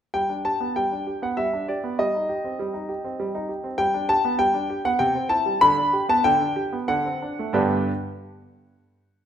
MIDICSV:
0, 0, Header, 1, 2, 480
1, 0, Start_track
1, 0, Key_signature, 1, "major"
1, 0, Tempo, 617920
1, 109, Time_signature, 3, 2, 24, 8
1, 1547, Tempo, 604839
1, 4427, Tempo, 644468
1, 7132, End_track
2, 0, Start_track
2, 0, Title_t, "Grand piano"
2, 0, Program_c, 0, 0
2, 107, Note_on_c, 0, 79, 92
2, 109, Note_on_c, 0, 55, 56
2, 227, Note_off_c, 0, 55, 0
2, 227, Note_on_c, 0, 62, 38
2, 254, Note_off_c, 0, 79, 0
2, 349, Note_on_c, 0, 67, 44
2, 349, Note_on_c, 0, 81, 82
2, 356, Note_off_c, 0, 62, 0
2, 470, Note_on_c, 0, 59, 47
2, 478, Note_off_c, 0, 67, 0
2, 568, Note_off_c, 0, 81, 0
2, 590, Note_on_c, 0, 79, 83
2, 594, Note_on_c, 0, 55, 55
2, 598, Note_off_c, 0, 59, 0
2, 710, Note_on_c, 0, 62, 35
2, 711, Note_off_c, 0, 55, 0
2, 830, Note_on_c, 0, 67, 50
2, 838, Note_off_c, 0, 62, 0
2, 920, Note_off_c, 0, 79, 0
2, 950, Note_on_c, 0, 59, 47
2, 955, Note_on_c, 0, 78, 73
2, 957, Note_off_c, 0, 67, 0
2, 1064, Note_on_c, 0, 76, 82
2, 1066, Note_on_c, 0, 55, 51
2, 1073, Note_off_c, 0, 78, 0
2, 1077, Note_off_c, 0, 59, 0
2, 1184, Note_off_c, 0, 55, 0
2, 1191, Note_on_c, 0, 62, 38
2, 1282, Note_off_c, 0, 76, 0
2, 1308, Note_on_c, 0, 74, 64
2, 1310, Note_on_c, 0, 67, 42
2, 1316, Note_off_c, 0, 62, 0
2, 1427, Note_on_c, 0, 59, 45
2, 1435, Note_off_c, 0, 67, 0
2, 1545, Note_on_c, 0, 75, 79
2, 1546, Note_off_c, 0, 59, 0
2, 1546, Note_off_c, 0, 74, 0
2, 1546, Note_on_c, 0, 55, 56
2, 1663, Note_off_c, 0, 55, 0
2, 1671, Note_on_c, 0, 63, 40
2, 1784, Note_on_c, 0, 67, 51
2, 1794, Note_off_c, 0, 63, 0
2, 1906, Note_on_c, 0, 60, 45
2, 1910, Note_off_c, 0, 67, 0
2, 2025, Note_on_c, 0, 55, 57
2, 2030, Note_off_c, 0, 60, 0
2, 2137, Note_on_c, 0, 63, 42
2, 2140, Note_off_c, 0, 55, 0
2, 2258, Note_on_c, 0, 67, 46
2, 2266, Note_off_c, 0, 63, 0
2, 2382, Note_on_c, 0, 60, 50
2, 2386, Note_off_c, 0, 67, 0
2, 2503, Note_on_c, 0, 55, 61
2, 2507, Note_off_c, 0, 60, 0
2, 2617, Note_off_c, 0, 55, 0
2, 2623, Note_on_c, 0, 63, 47
2, 2732, Note_on_c, 0, 67, 43
2, 2746, Note_off_c, 0, 63, 0
2, 2853, Note_on_c, 0, 60, 45
2, 2861, Note_off_c, 0, 67, 0
2, 2966, Note_on_c, 0, 79, 105
2, 2968, Note_on_c, 0, 55, 65
2, 2975, Note_off_c, 0, 60, 0
2, 2977, Note_off_c, 0, 75, 0
2, 3090, Note_off_c, 0, 55, 0
2, 3094, Note_on_c, 0, 62, 48
2, 3188, Note_off_c, 0, 79, 0
2, 3212, Note_on_c, 0, 81, 109
2, 3216, Note_on_c, 0, 67, 59
2, 3223, Note_off_c, 0, 62, 0
2, 3335, Note_on_c, 0, 59, 60
2, 3343, Note_off_c, 0, 67, 0
2, 3431, Note_off_c, 0, 81, 0
2, 3448, Note_on_c, 0, 79, 105
2, 3451, Note_on_c, 0, 55, 61
2, 3462, Note_off_c, 0, 59, 0
2, 3569, Note_on_c, 0, 62, 46
2, 3570, Note_off_c, 0, 55, 0
2, 3695, Note_on_c, 0, 67, 56
2, 3698, Note_off_c, 0, 62, 0
2, 3779, Note_off_c, 0, 79, 0
2, 3814, Note_on_c, 0, 59, 51
2, 3816, Note_on_c, 0, 78, 99
2, 3821, Note_off_c, 0, 67, 0
2, 3927, Note_on_c, 0, 79, 98
2, 3930, Note_on_c, 0, 48, 75
2, 3935, Note_off_c, 0, 59, 0
2, 3936, Note_off_c, 0, 78, 0
2, 4051, Note_off_c, 0, 48, 0
2, 4053, Note_on_c, 0, 60, 53
2, 4168, Note_on_c, 0, 81, 95
2, 4172, Note_on_c, 0, 64, 48
2, 4176, Note_off_c, 0, 79, 0
2, 4184, Note_off_c, 0, 60, 0
2, 4299, Note_on_c, 0, 55, 56
2, 4306, Note_off_c, 0, 64, 0
2, 4420, Note_on_c, 0, 83, 124
2, 4421, Note_off_c, 0, 81, 0
2, 4423, Note_on_c, 0, 50, 74
2, 4425, Note_off_c, 0, 55, 0
2, 4539, Note_off_c, 0, 50, 0
2, 4542, Note_on_c, 0, 62, 52
2, 4658, Note_on_c, 0, 67, 61
2, 4666, Note_off_c, 0, 62, 0
2, 4746, Note_off_c, 0, 83, 0
2, 4776, Note_on_c, 0, 59, 63
2, 4780, Note_on_c, 0, 81, 110
2, 4783, Note_off_c, 0, 67, 0
2, 4890, Note_on_c, 0, 79, 120
2, 4896, Note_on_c, 0, 50, 72
2, 4898, Note_off_c, 0, 81, 0
2, 4902, Note_off_c, 0, 59, 0
2, 5007, Note_on_c, 0, 62, 48
2, 5012, Note_off_c, 0, 50, 0
2, 5127, Note_on_c, 0, 67, 58
2, 5137, Note_off_c, 0, 62, 0
2, 5180, Note_off_c, 0, 79, 0
2, 5250, Note_on_c, 0, 59, 50
2, 5257, Note_off_c, 0, 67, 0
2, 5366, Note_on_c, 0, 78, 103
2, 5370, Note_on_c, 0, 50, 66
2, 5374, Note_off_c, 0, 59, 0
2, 5492, Note_off_c, 0, 50, 0
2, 5494, Note_on_c, 0, 60, 49
2, 5621, Note_on_c, 0, 62, 46
2, 5627, Note_off_c, 0, 60, 0
2, 5747, Note_on_c, 0, 57, 52
2, 5751, Note_off_c, 0, 62, 0
2, 5832, Note_off_c, 0, 78, 0
2, 5850, Note_on_c, 0, 43, 76
2, 5852, Note_on_c, 0, 50, 69
2, 5854, Note_on_c, 0, 59, 65
2, 5855, Note_on_c, 0, 62, 74
2, 5857, Note_on_c, 0, 67, 81
2, 5857, Note_on_c, 0, 79, 69
2, 5858, Note_on_c, 0, 71, 65
2, 5867, Note_off_c, 0, 57, 0
2, 6125, Note_off_c, 0, 43, 0
2, 6126, Note_off_c, 0, 50, 0
2, 6127, Note_off_c, 0, 59, 0
2, 6127, Note_off_c, 0, 62, 0
2, 6128, Note_off_c, 0, 67, 0
2, 6129, Note_off_c, 0, 71, 0
2, 6129, Note_off_c, 0, 79, 0
2, 7132, End_track
0, 0, End_of_file